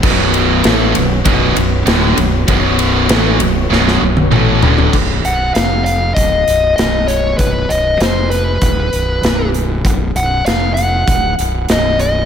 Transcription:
Already playing: B3 F#4 C#5
0.02 B0 B1 F#2 B2, kick, crash
0.34 ride
0.64 A1 A2 E3 A3, snare, ride
0.95 B0 B1 F#2, ride
1.24 B0 B1 F#2 B2, kick, ride
1.56 B0 B1 F#2, ride
1.86 D1 D2 A2 D3, snare, ride
2.17 B0 B1 F#2, ride
2.47 B0 B1 F#2 B2, kick, ride
2.79 ride
3.08 A1 A2 E3 A3, snare, ride
3.39 B0 B1 F#2, ride
3.69 B0 B1 F#2 B2, snare
3.88 snare
4.01 B0 B1 F#2
4.17 high tom
4.31 A1 A2 E3 A3, mid tom
4.62 D1 D2 A2 D3, floor tom
4.78 floor tom
4.93 B0, kick, crash
5.25 B0 F#5, closed hi-hat
5.54 F1 F5, snare, closed hi-hat
5.85 F5, closed hi-hat
6.14 D1 D#5, kick, closed hi-hat
6.48 B0, closed hi-hat
6.76 B0 D#5, snare, closed hi-hat
7.08 C#5, closed hi-hat
7.38 B0 B4, kick, closed hi-hat
7.69 B0 D#5, closed hi-hat
8.00 F1 C5, snare, closed hi-hat
8.30 B4, closed hi-hat
8.62 D1, kick, closed hi-hat
8.93 B0, closed hi-hat
9.23 B0, snare, closed hi-hat
9.54 closed hi-hat
9.85 B0, kick, closed hi-hat
10.15 B0 F#5, closed hi-hat
10.46 F1 F5, snare, closed hi-hat
10.74 F#5, closed hi-hat
11.08 D1, kick, closed hi-hat
11.39 B0, closed hi-hat
11.68 B0 D#5, snare, closed hi-hat
12.00 D#5, closed hi-hat

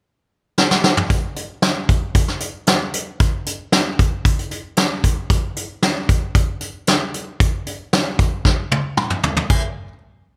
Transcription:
0.58 snare
0.71 snare
0.84 snare
0.97 mid tom
1.10 kick, closed hi-hat
1.36 closed hi-hat
1.62 snare, closed hi-hat
1.89 kick, closed hi-hat
2.15 kick, closed hi-hat
2.28 snare
2.40 closed hi-hat
2.67 snare, closed hi-hat
2.94 closed hi-hat
3.20 kick, closed hi-hat
3.46 closed hi-hat
3.72 snare, closed hi-hat
3.99 kick, closed hi-hat
4.25 kick, closed hi-hat
4.39 closed hi-hat
4.51 closed hi-hat
4.77 snare, closed hi-hat
5.04 kick, closed hi-hat
5.30 kick, closed hi-hat
5.56 closed hi-hat
5.83 snare, closed hi-hat
6.09 kick, closed hi-hat
6.35 kick, closed hi-hat
6.61 closed hi-hat
6.87 snare, closed hi-hat
7.14 closed hi-hat
7.40 kick, closed hi-hat
7.67 closed hi-hat
7.93 snare, closed hi-hat
8.19 kick, closed hi-hat
8.45 kick, snare
8.71 high tom
8.97 mid tom
9.10 mid tom
9.23 floor tom
9.37 floor tom
9.50 kick, crash

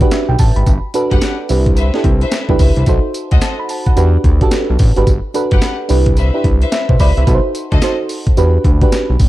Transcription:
Already playing: F#4 G4 B4
0.00 D4 F#4 G4 B4, kick, closed hi-hat
0.11 E5, snare, clap, closed hi-hat, tambourine
0.29 B1 G5
0.39 A1 A5, kick, open hi-hat, tambourine
0.56 G#1 B5, closed hi-hat
0.66 G1, kick, closed hi-hat, tambourine
0.94 D4 F#4 A4 B4, closed hi-hat, tambourine
1.11 G1 G4 B4 F#5, kick, closed hi-hat
1.21 snare, clap, closed hi-hat, tambourine
1.49 C2 D4 E4 G4 B4, open hi-hat, tambourine
1.66 kick, closed hi-hat
1.77 B4 C5 E5, closed hi-hat, tambourine
1.94 D4 E4 G4 A4, snare
2.04 C2, kick, closed hi-hat
2.21 B4 C5 E5, closed hi-hat
2.31 snare, clap, closed hi-hat, tambourine
2.49 B1 D4 E4 G4 B4, kick
2.59 C#2 B4 C5 E5, kick, open hi-hat, tambourine
2.76 C2, closed hi-hat
2.86 B1 D#4 F#4 A4 C5, kick, closed hi-hat, tambourine
3.14 closed hi-hat, tambourine
3.31 D2 A4 C5 D#5 F#5, kick, closed hi-hat
3.41 A5, snare, clap, closed hi-hat, tambourine
3.59 B5
3.69 A5, open hi-hat, tambourine
3.86 F#5, kick, closed hi-hat
3.96 E2 D4 F#4 G4 B4, closed hi-hat, tambourine
4.24 D2, kick, closed hi-hat
4.41 D4 F#4 G4 A4, kick, closed hi-hat
4.51 snare, clap, closed hi-hat, tambourine
4.70 B1
4.79 A1, kick, open hi-hat, tambourine
4.96 G#1 D4 F#4 G4 B4, closed hi-hat
5.07 G1, kick, closed hi-hat, tambourine
5.34 D4 F#4 A4 B4, closed hi-hat, tambourine
5.51 G1 G4 B4 F#5, kick, closed hi-hat
5.61 snare, clap, closed hi-hat, tambourine
5.89 C2 D4 E4 G4 B4, open hi-hat, tambourine
6.06 kick, closed hi-hat
6.17 B4 C5 E5, closed hi-hat, tambourine
6.34 D4 E4 G4 B4
6.44 C2, kick, closed hi-hat
6.61 B4 C5 E5, closed hi-hat
6.72 E5, snare, clap, closed hi-hat, tambourine
6.89 B1 C5, kick
6.99 C#2 B4 C5 D5 E5 B5, kick, open hi-hat, tambourine
7.17 C2 E5, closed hi-hat
7.27 B1 D#4 F#4 A4 B4, kick, closed hi-hat, tambourine
7.34 C5
7.55 closed hi-hat, tambourine
7.71 D2 A4 C5 D#5, kick, closed hi-hat
7.82 D#4 F#4 A4 C5, snare, clap, closed hi-hat, tambourine
8.09 open hi-hat, tambourine
8.27 kick, closed hi-hat
8.37 E2 D4 F#4 G4 B4, closed hi-hat, tambourine
8.64 D2, kick, closed hi-hat
8.81 D4 F#4 G4 B4, kick, closed hi-hat
8.92 snare, clap, closed hi-hat, tambourine
9.10 B1
9.19 A1, kick, open hi-hat, tambourine

